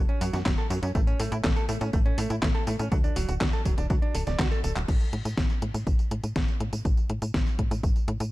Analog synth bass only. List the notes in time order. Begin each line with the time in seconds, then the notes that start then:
0.21 F#2
0.33 F#2
0.46 F#1
0.70 F#2
0.83 F#2
0.95 A1
1.20 A2
1.32 A2
1.44 A1
1.69 A2
1.81 A2
1.93 A1
2.18 A2
2.30 A2
2.43 A1
2.67 A2
2.79 A2
2.92 D2
3.16 D1
3.29 D1
3.41 D2
3.66 D1
3.78 D1
3.90 D2
4.15 D1
4.27 D1
4.39 D2
4.64 D1
4.76 D1
4.88 A1
5.13 A2
5.25 A2
5.38 A1
5.62 A2
5.74 A2
5.87 A1
6.11 A2
6.24 A2
6.36 A1
6.60 A2
6.73 A2
6.85 A1
7.10 A2
7.22 A2
7.34 A1
7.59 A2
7.71 A2
7.83 A1
8.08 A2
8.20 A2